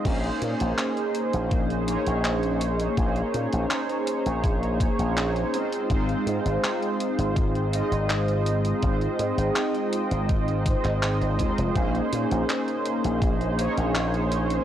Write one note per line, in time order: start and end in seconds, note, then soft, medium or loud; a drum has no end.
0.05 0.29 A#1 medium
0.05 1.83 A#3 medium
0.05 1.84 C#4 medium
0.05 5.50 C#4 medium
0.05 1.84 D#4 medium
0.05 11.72 G#4 medium
0.05 1.84 G#4 medium
0.05 1.85 C5 loud
0.05 5.50 D#5 medium
0.05 2.95 C6 medium
0.05 kick loud
0.05 closed hi-hat medium
0.05 crash medium
0.24 closed hi-hat soft
0.42 0.54 A#2 medium
0.42 closed hi-hat loud
0.60 0.72 A#1 medium
0.60 closed hi-hat medium
0.78 clap loud
0.78 closed hi-hat medium
0.97 closed hi-hat soft
1.15 closed hi-hat medium
1.33 1.96 A#1 loud
1.33 closed hi-hat medium
1.51 kick loud
1.51 closed hi-hat medium
1.70 closed hi-hat soft
1.87 2.93 A#3 medium
1.87 2.93 C#4 medium
1.87 2.93 D#4 medium
1.87 2.94 G#4 medium
1.87 2.94 C#5 loud
1.87 closed hi-hat medium
2.07 2.87 A#1 medium
2.07 closed hi-hat medium
2.25 clap loud
2.25 closed hi-hat medium
2.43 closed hi-hat soft
2.61 closed hi-hat medium
2.80 closed hi-hat medium
2.96 3.21 A#1 medium
2.96 5.49 A#3 medium
2.96 5.49 C#4 medium
2.96 5.50 D#4 medium
2.96 5.50 G#4 medium
2.96 5.50 C5 medium
2.96 5.51 A#5 medium
2.96 kick loud
2.96 closed hi-hat medium
3.16 closed hi-hat soft
3.34 3.46 A#2 medium
3.34 closed hi-hat medium
3.53 3.64 A#1 loud
3.53 closed hi-hat medium
3.71 clap loud
3.71 closed hi-hat medium
3.89 closed hi-hat soft
4.07 closed hi-hat loud
4.26 4.88 A#1 loud
4.26 closed hi-hat medium
4.44 kick loud
4.44 closed hi-hat medium
4.63 closed hi-hat soft
4.80 kick loud
4.80 closed hi-hat medium
4.99 5.43 A#1 medium
4.99 closed hi-hat medium
5.17 clap loud
5.17 closed hi-hat medium
5.36 closed hi-hat soft
5.54 5.86 G#3 medium
5.54 5.86 C4 medium
5.54 5.86 D#4 medium
5.54 5.87 F4 medium
5.54 5.87 C5 medium
5.54 8.44 F5 medium
5.54 14.64 C6 loud
5.54 closed hi-hat medium
5.72 closed hi-hat medium
5.89 6.14 G#1 medium
5.89 7.68 G#3 loud
5.89 7.69 C4 medium
5.89 7.69 D#4 medium
5.89 7.70 F4 medium
5.89 7.70 C5 loud
5.89 kick loud
5.89 closed hi-hat medium
6.09 closed hi-hat soft
6.26 6.39 G#2 medium
6.26 closed hi-hat medium
6.45 6.57 G#1 medium
6.45 closed hi-hat medium
6.64 clap loud
6.64 closed hi-hat medium
6.82 closed hi-hat soft
7.00 closed hi-hat medium
7.18 7.81 G#1 loud
7.18 closed hi-hat medium
7.36 kick loud
7.36 closed hi-hat medium
7.55 closed hi-hat soft
7.72 8.78 G#3 medium
7.72 8.79 C4 medium
7.72 8.79 D#4 medium
7.72 8.79 F4 medium
7.72 8.80 D#5 loud
7.72 closed hi-hat medium
7.91 8.72 G#1 medium
7.91 closed hi-hat medium
8.10 clap loud
8.10 closed hi-hat medium
8.28 closed hi-hat soft
8.46 11.72 G5 medium
8.46 closed hi-hat medium
8.65 closed hi-hat medium
8.82 9.06 G#1 loud
8.82 11.34 G#3 medium
8.82 11.35 C4 medium
8.82 11.35 D#4 medium
8.82 11.35 F4 medium
8.82 11.36 C5 medium
8.82 kick loud
8.82 closed hi-hat soft
9.01 closed hi-hat soft
9.19 9.31 G#2 medium
9.19 closed hi-hat medium
9.37 9.49 G#1 medium
9.37 closed hi-hat medium
9.56 clap loud
9.56 closed hi-hat medium
9.75 closed hi-hat soft
9.93 closed hi-hat medium
10.11 10.74 G#1 loud
10.11 closed hi-hat medium
10.29 kick loud
10.29 closed hi-hat medium
10.48 closed hi-hat soft
10.66 kick loud
10.66 closed hi-hat medium
10.84 11.21 G#1 medium
10.84 clap soft
10.84 closed hi-hat soft
11.03 clap loud
11.03 closed hi-hat medium
11.21 11.40 G#1 medium
11.21 closed hi-hat soft
11.39 11.51 D#2 medium
11.39 11.71 G#3 medium
11.39 11.71 C4 medium
11.39 11.72 D#4 medium
11.39 11.72 F4 medium
11.39 11.72 C5 medium
11.39 kick medium
11.39 closed hi-hat medium
11.58 11.69 F1 medium
11.58 closed hi-hat medium
11.74 11.99 A#1 loud
11.74 13.54 A#3 medium
11.74 13.54 C#4 medium
11.74 14.64 C#4 medium
11.74 13.54 D#4 medium
11.74 14.64 G#4 medium
11.74 13.55 G#4 medium
11.74 13.55 C5 loud
11.74 14.64 D#5 medium
11.74 kick loud
11.74 closed hi-hat soft
11.95 closed hi-hat soft
12.13 12.24 A#2 medium
12.13 closed hi-hat medium
12.31 12.43 A#1 loud
12.31 closed hi-hat medium
12.50 clap loud
12.50 closed hi-hat medium
12.68 closed hi-hat soft
12.86 closed hi-hat medium
13.04 13.67 A#1 loud
13.04 closed hi-hat medium
13.22 kick loud
13.22 closed hi-hat medium
13.41 closed hi-hat soft
13.58 14.63 A#3 medium
13.58 14.64 C#4 medium
13.58 14.64 D#4 medium
13.58 14.64 G#4 medium
13.58 14.64 C#5 loud
13.58 closed hi-hat medium
13.77 14.58 A#1 medium
13.77 closed hi-hat soft
13.95 clap loud
13.95 closed hi-hat medium
14.14 closed hi-hat soft
14.32 closed hi-hat medium
14.50 closed hi-hat medium